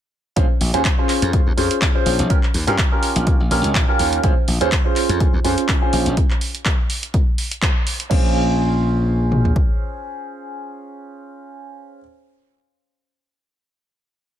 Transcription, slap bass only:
0.37 0.46 A#1 loud
0.61 0.71 A#1 medium
0.74 0.82 D#2 medium
1.22 1.40 F2 loud
1.47 1.55 D#2 medium
1.58 1.67 F2 medium
2.06 2.16 A#1 medium
2.19 2.27 A#1 medium
2.54 2.64 D#2 medium
2.67 2.76 G2 loud
3.16 3.33 A#1 loud
3.40 3.48 A#1 medium
3.51 3.61 A#1 medium
3.64 3.75 C#2 medium
3.75 3.85 A#1 medium
3.99 4.18 D#2 medium
4.24 4.34 A#1 loud
4.48 4.58 A#1 medium
4.61 4.69 D#2 loud
5.09 5.27 F2 loud
5.33 5.42 D#2 medium
5.45 5.54 F2 medium
5.93 6.03 A#1 medium
6.06 6.14 A#1 medium
8.11 9.52 A#1 loud

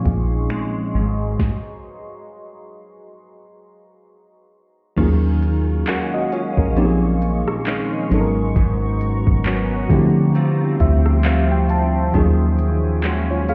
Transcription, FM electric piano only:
0.00 0.95 F3 medium
0.00 0.97 G#3 medium
0.00 0.95 C4 medium
0.00 0.95 C#4 medium
0.00 0.95 D#4 medium
0.00 0.96 F4 medium
0.00 0.96 G#4 medium
4.96 6.73 F#3 medium
4.96 6.73 A#3 medium
4.96 5.42 C#4 medium
4.96 5.43 F4 medium
5.01 5.43 G#4 medium
5.88 6.13 A#4 medium
5.88 6.12 F#5 medium
6.14 6.32 F#4 medium
6.14 6.32 D#5 medium
6.33 6.57 F4 medium
6.33 6.57 C#5 medium
6.58 6.76 C#4 medium
6.58 7.01 A#4 medium
6.76 8.11 F3 medium
6.76 8.11 C4 medium
6.76 8.10 C#4 medium
6.76 8.12 D#4 medium
6.76 6.85 G4 medium
6.85 8.15 G#4 medium
8.10 9.86 F#3 medium
8.10 9.86 B3 medium
8.10 9.87 C#4 medium
8.10 9.88 D#4 medium
8.14 8.20 A4 medium
8.20 9.91 A#4 medium
9.89 12.09 F3 medium
9.89 12.10 A3 medium
9.89 12.10 C4 medium
9.89 12.11 E4 medium
9.93 12.11 G4 medium
10.80 11.22 E5 medium
11.25 11.49 F5 medium
11.52 11.69 G5 medium
11.70 12.11 A5 medium
12.13 13.54 F#3 medium
12.13 13.54 A#3 medium
12.13 13.54 C#4 medium
12.13 12.59 F4 medium
12.17 12.59 G#4 medium
13.30 13.48 F4 medium
13.30 13.48 C#5 medium
13.49 13.54 G#4 medium
13.49 13.54 F5 medium

